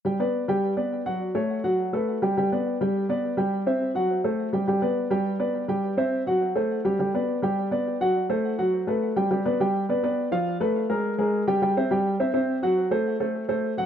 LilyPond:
\new Staff \with { instrumentName = "Grand piano" } { \time 4/4 \key g \major \tempo 4 = 208 <g g' g''>8 <b b' d''>4 <g g' g''>4 <b b' d''>4 <fis fis' fis''>8~ | <fis fis' fis''>8 <a a' cis''>4 <fis fis' fis''>4 <a a' b'>4 <g g' g''>8 | <g g' g''>8 <b b' d''>4 <g g' g''>4 <b b' d''>4 <g g' g''>8~ | <g g' g''>8 <c' c'' e''>4 <fis fis' fis''>4 <a a' c''>4 <g g' g''>8 |
<g g' g''>8 <b b' d''>4 <g g' g''>4 <b b' d''>4 <g g' g''>8~ | <g g' g''>8 <c' c'' e''>4 <fis fis' fis''>4 <a a' c''>4 <g g' g''>8 | <g g' g''>8 <b b' d''>4 <g g' g''>4 <b b' d''>4 <fis fis' fis''>8~ | <fis fis' fis''>8 <a a' c''>4 <fis fis' fis''>4 <a a' b'>4 <g g' g''>8 |
<g g' g''>8 <b b' d''>8 <g g' g''>4 <b b' d''>8 <b b' d''>4 <f f' f''>8~ | <f f' f''>8 <a a' b'>4 <gis gis' bes'>4 <gis gis' bes'>4 <g g' g''>8 | <g g' g''>8 <c' c'' e''>8 <g g' g''>4 <c' c'' e''>8 <c' c'' e''>4 <fis fis' fis''>8~ | <fis fis' fis''>8 <a a' c''>4 <a a' c''>4 <a a' c''>4 <fis fis' fis''>8 | }